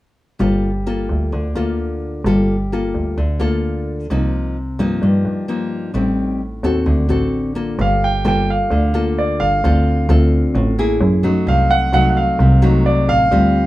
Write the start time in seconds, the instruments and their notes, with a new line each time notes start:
0.39 double bass G1, nylon-string guitar G3 A#3 F4 A4
0.87 nylon-string guitar A#3 F4 A4
1.10 double bass D2
1.32 double bass D2, nylon-string guitar D3
1.55 double bass D2, nylon-string guitar A#3 F4 A4
2.25 double bass G1, nylon-string guitar G3 A#3 F4 A4
2.72 nylon-string guitar A#3 F4 A4
2.95 double bass D2
3.18 double bass D2, nylon-string guitar D3
3.40 double bass D2, nylon-string guitar A#3 F4 A4
4.10 double bass C2, nylon-string guitar C3 F3 A#3 D#4
4.79 double bass G2, nylon-string guitar F3 A#3 D#4
5.02 double bass G2, nylon-string guitar G2
5.25 double bass G2
5.48 nylon-string guitar F3 A#3 D#4
5.94 double bass A1, nylon-string guitar A2 G3 C4 D#4
6.64 double bass D#2, nylon-string guitar C4 F#4 A4
6.86 double bass D2, nylon-string guitar D3
7.09 double bass A1, nylon-string guitar C4 F#4 A4
7.55 nylon-string guitar A#3 F4 A4
7.79 double bass G1, nylon-string guitar G3, grand piano F5
8.04 grand piano G5
8.25 double bass G1, nylon-string guitar A#3 F4 A4, grand piano G5
8.50 grand piano F5
8.71 double bass D2, nylon-string guitar D3
8.94 nylon-string guitar A#3 F4 A4
9.19 grand piano D5
9.40 double bass G1, grand piano F5
9.64 double bass D2, nylon-string guitar D3 C4 F4 A4
10.09 double bass D2, nylon-string guitar C4 F4 A4
10.55 double bass A1, nylon-string guitar A2
10.79 nylon-string guitar A#3 E4 G#4
11.01 double bass F#2
11.23 double bass F#2, nylon-string guitar F#3 A3 D#4
11.47 double bass C2, nylon-string guitar C3, grand piano F5
11.71 grand piano F#5
11.93 double bass C2, nylon-string guitar F#3 A3 D#4, grand piano F#5
12.10 grand piano F#5
12.17 grand piano F5
12.39 double bass C2, nylon-string guitar C3
12.62 nylon-string guitar F#3 A3 D#4
12.86 grand piano D5
13.08 double bass A1, grand piano F5
13.31 double bass D2, nylon-string guitar D3 G3 C4 F4